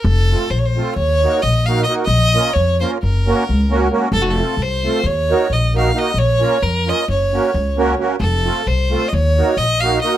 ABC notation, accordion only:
X:1
M:9/8
L:1/8
Q:3/8=88
K:none
V:1 name="Accordion"
z [A,CFA] z [A,CFA] z [_B,_E_G_B] z [B,EGB] [B,EGB] | z [_B,_DF_B] z [B,DFB] z [B,D_GB] z [B,DGB] [B,DGB] | z [A,CFA] z [A,CFA] z [_B,_E_G_B] z [B,EGB] [B,EGB] | z [_B,_DF_B] z [B,DFB] z [B,D_GB] z [B,DGB] [B,DGB] |
z [A,CFA] z [A,CFA] z [_B,_E_G_B] z [B,EGB] [B,EGB] |]